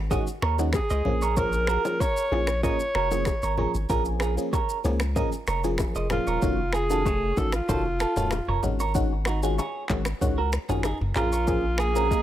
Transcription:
Already playing: G#1
0.10 D#3 G#3 C#4 F#4 G#4 D#5, kick, low conga, shaker
0.27 shaker
0.42 D#2 A#4 C#5, finger snap, cross-stick
0.58 D#3 G#3 C#4 F#4, low bongo, shaker
0.73 G#4, finger snap, kick, cross-stick, high bongo, shaker
0.90 C#2 C5 D#5, shaker
1.05 A#1 F3 A#3 C#4 G#4, low conga
1.22 A#4 C#5, shaker
1.37 F3 A#3 C#4 G#4 A#4 C#5, kick, low conga, shaker
1.53 shaker
1.67 F#4 A#4, finger snap, cross-stick, shaker
1.85 F3 A#3 C#4 G#4, low bongo, shaker
2.00 A#4 C#5, kick, high bongo, shaker
2.17 shaker
2.31 A#1 F3 A#3 C#4 G#4, low bongo
2.47 finger snap, cross-stick, shaker
2.63 F3 A#3 C#4 G#4 A#4 C#5 D#5, kick, low conga, shaker
2.80 shaker
2.95 F1 F#4 A#4, finger snap, cross-stick
3.11 F3 A#3 C#4 G#4, low bongo, shaker
3.25 finger snap, kick, cross-stick, high bongo, shaker
3.43 G#1 A#4 C#5, shaker
3.57 F3 A#3 C#4 G#4 A#4 C#5, low conga
3.75 G#1, shaker
3.89 A#1 F3 A#3 C#4 F4 G#4 A#4, kick, low conga, shaker
4.05 shaker
4.20 F4 G#4, finger snap, cross-stick, shaker
4.37 F3 A#3 C#4 G#4, shaker
4.53 A#4 C#5, kick, high bongo, shaker
4.69 shaker
4.84 C#2 F3 A#3 C#4 G#4, low bongo, shaker
5.00 finger snap, cross-stick, shaker
5.16 F3 A#3 C#4 G#4 A#4 D#5, kick, low conga, shaker
5.32 shaker
5.47 F1 A#4 C#5, finger snap, cross-stick, shaker
5.64 F3 A#3 C#4 G#4, low bongo, shaker
5.78 finger snap, kick, cross-stick, high bongo, shaker
5.95 F1 C5 D#5, shaker
6.10 F3 A#3 C#4 F4 G#4, finger snap, cross-stick, low bongo, low conga, shaker
6.27 D#1 A#4 C#5, shaker
6.42 F1 D#3 A3 C#4 F#4, kick, low conga, shaker
6.73 F4 G#4, finger snap, cross-stick, shaker
6.90 D#3 A3 C#4 F4 F#4 A4, shaker
7.06 A3 C#5, kick, high bongo, shaker
7.37 A1 D#3 A3 C#4 F#4 A4, kick, low bongo, shaker
7.52 F4, finger snap, cross-stick, shaker
7.68 F1 D#3 A3 C#4 F#4 A4 C5, kick, low conga, shaker
8.00 F4 A4, finger snap, cross-stick, shaker
8.16 D#1 D#3 A3 C#4 F4 F#4 A4, mid tom, low bongo, shaker
8.31 finger snap, cross-stick, high bongo, shaker
8.48 F1 A#4 C#5, mid tom
8.63 G#1 D#3 G#3 C#4 F#4, low bongo, low conga, shaker
8.80 A#4 C#5, shaker
8.95 D#3 G#3 C#4 F#4, kick, low conga, shaker
9.25 D#4 F#4, finger snap, cross-stick, shaker
9.43 D#3 G#3 C#4 F4 F#4 G#4, shaker
9.58 G#4 C#5, high bongo, shaker
9.89 G#1 D#3 G#3 C#4 F#4, kick, clap, low bongo, shaker
10.05 finger snap, cross-stick, shaker
10.21 C#2 D#3 G#3 C#4 F#4, kick, low conga, shaker
10.38 F#4 A#4
10.53 finger snap, cross-stick, shaker
10.69 G#1 D#3 G#3 C#4 F4 F#4 G#4, mid tom, low bongo, shaker
10.83 D#4 G#4, finger snap, cross-stick, high bongo, shaker
11.01 F#1, mid tom
11.15 A#1 F3 A#3 C#4 F4 G#4 A#4, clap, low bongo, low conga, shaker
11.32 A#4 C#5, shaker
11.47 F3 A#3 C#4 G#4, kick, swell, low conga, shaker
11.78 F4 G#4, finger snap, cross-stick, shaker
11.95 F3 A#3 C#4 F#4 G#4 A#4, shaker
12.11 A#4 D#5, kick, high bongo, shaker

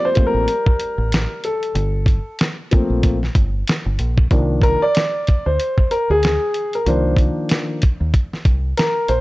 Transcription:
Already playing: F3 G3 A3 A#3 C4
0.05 C5
0.15 F3 A3 A#3 C4, kick, closed hi-hat
0.27 A#4
0.34 A1
0.48 closed hi-hat
0.66 kick
0.80 closed hi-hat
0.98 A1
1.12 snare, closed hi-hat
1.44 A4, closed hi-hat
1.63 closed hi-hat
1.75 G1, closed hi-hat
2.06 kick, closed hi-hat
2.39 snare, closed hi-hat
2.71 F3 A3 A#3 C4, kick, closed hi-hat
2.90 A#1
3.03 kick, closed hi-hat
3.23 snare
3.35 G1, kick, closed hi-hat
3.67 snare, closed hi-hat
3.86 G1
3.99 A#1, closed hi-hat
4.18 kick
4.31 C2 D#3 F3 A#3 D4, kick, closed hi-hat
4.62 A#4, kick, closed hi-hat
4.82 D5
4.95 snare, closed hi-hat
5.27 kick, closed hi-hat
5.46 D2 C5
5.60 closed hi-hat
5.78 kick
5.91 A#4, closed hi-hat
6.10 D2 G#4
6.23 snare, closed hi-hat
6.54 closed hi-hat
6.73 A#4, closed hi-hat
6.86 C2 D#3 F3 A#3 D4 C5, closed hi-hat
7.17 kick, closed hi-hat
7.49 snare, closed hi-hat
7.82 kick, closed hi-hat
8.01 D#2
8.14 kick, closed hi-hat
8.33 snare
8.45 C2, kick, closed hi-hat
8.77 A#4, snare, closed hi-hat
9.08 A#1 C5, closed hi-hat

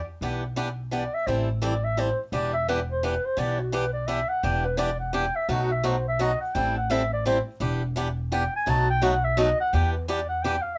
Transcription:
0.21 B1 E3 B3 D4 G4
0.56 E3 B3 D4 G4
0.91 E3 B3 D4 G4 D5
1.15 E5
1.27 A1 E3 G3 C4 E4 A4 C5
1.62 E3 G3 C4 E4 A4 D5
1.84 E5
1.97 E3 G3 C4 E4 A4 C5
2.32 E1 E3 B3 D4 G4 D5
2.54 E5
2.68 E3 B3 D4 G4 B4
2.92 C5
3.03 E3 B3 D4 G4 B4
3.26 C5
3.37 B1 E3 B3 D4 G4 D5
3.60 F#4
3.72 E3 B3 D4 G4 B4
3.94 D5
4.07 E3 B3 D4 G4 E5
4.29 F#5
4.43 E1 E3 B3 D4 G4 G5
4.65 B4
4.77 E3 B3 D4 G4 D5
5.00 F#5
5.13 E3 B3 D4 G4 G5
5.36 E5
5.49 B1 B2 F#3 A3 D#4 F#4 F#5
5.72 E5
5.84 B2 F#3 A3 D#4 F#4 C5
6.08 E5
6.19 B2 F#3 A3 D#4 F#4 D#5
6.41 F#5
6.54 A1 E3 G3 C4 E4 A4 G5
6.77 F#5
6.90 E3 G3 C4 E4 A4 E5
7.13 D5
7.25 E3 G3 C4 E4 A4 C5
7.60 E1 E3 B3 D4 G4
7.96 E3 B3 D4 G4
8.32 E3 B3 D4 G4 G5
8.56 G#5
8.66 B1 B2 F#3 A3 D#4 F#4 A5
8.90 G5
9.02 B2 F#3 A3 D#4 F#4 F#5
9.25 E5
9.37 B2 F#3 A3 D#4 F#4 D#5
9.61 F#5
9.73 E2 E3 B3 D4 G4 G5
9.93 B4
10.08 E3 B3 D4 G4 D5
10.29 F#5
10.43 E3 B3 D4 G4 G5
10.62 F5

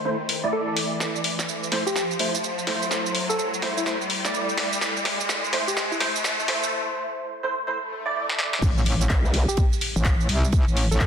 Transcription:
Already playing: riser
0.05 A3 E4 C5
0.29 open hi-hat
0.44 A3 E4 D5
0.53 A4
0.68 A4
0.77 open hi-hat
1.00 snare, shaker
1.16 shaker
1.24 open hi-hat
1.39 snare, shaker
1.49 shaker
1.63 shaker
1.72 A3 E4 C5, snare, open hi-hat
1.86 G4, shaker
1.96 snare, shaker
2.11 shaker
2.19 A3 E4 C5, open hi-hat
2.35 shaker
2.44 shaker
2.59 shaker
2.67 A3 E4 C5, snare, open hi-hat
2.82 shaker
2.91 snare, shaker
3.06 shaker
3.15 open hi-hat
3.29 A4, shaker
3.38 A4, shaker
3.54 shaker
3.62 A3 E4 C5, snare, open hi-hat
3.77 E4, shaker
3.86 A3 E4 C5, snare, shaker
4.01 shaker
4.10 open hi-hat
4.25 A3 E4 D5, snare, shaker
4.34 shaker
4.49 shaker
4.58 snare, open hi-hat
4.73 shaker
4.81 snare, shaker
4.97 shaker
5.05 snare, open hi-hat
5.20 shaker
5.29 snare, shaker
5.44 shaker
5.53 A3 E4 C5, snare, open hi-hat
5.68 G4, shaker
5.77 snare, shaker
5.91 E4, shaker
6.00 A3 E4 C5, snare, open hi-hat
6.16 shaker
6.24 snare, shaker
6.40 shaker
6.48 A3 E4 C5, snare, open hi-hat
6.63 shaker
7.43 A3 E4 C5
7.67 A3 E4 C5, swell
8.06 A3 E4 D5
8.29 snare
8.39 snare
8.53 snare
8.62 A1, kick, crash, ride, impact, shaker
8.78 shaker
8.86 open hi-hat, ride
9.01 ride, shaker
9.09 C2, kick, snare, clap, ride, shaker
9.25 shaker
9.34 open hi-hat, ride
9.48 G4, shaker
9.57 kick, ride, shaker
9.73 shaker
9.81 open hi-hat, ride
9.96 A1, shaker
10.04 kick, snare, clap, ride, shaker
10.20 shaker
10.29 C2, open hi-hat, ride
10.44 shaker
10.52 kick, ride, shaker
10.67 A1, shaker
10.77 open hi-hat, ride
10.91 A1 A4, snare, shaker
11.00 A4, kick, snare, clap, ride, shaker

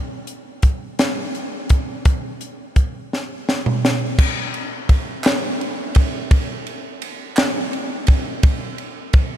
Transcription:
0.27 closed hi-hat
0.62 kick, closed hi-hat
0.99 snare, closed hi-hat
1.35 closed hi-hat
1.69 kick, closed hi-hat
2.05 kick, closed hi-hat
2.41 closed hi-hat
2.76 kick, closed hi-hat
3.13 snare
3.49 snare
3.66 mid tom
3.85 snare
4.19 kick, crash
4.54 ride
4.89 kick, ride
5.24 snare, clap, ride
5.61 ride
5.95 kick, ride
6.31 kick, ride
6.67 ride
7.02 ride
7.37 snare, clap, ride
7.73 ride
8.07 kick, ride
8.43 kick, ride
8.78 ride
9.13 kick, ride

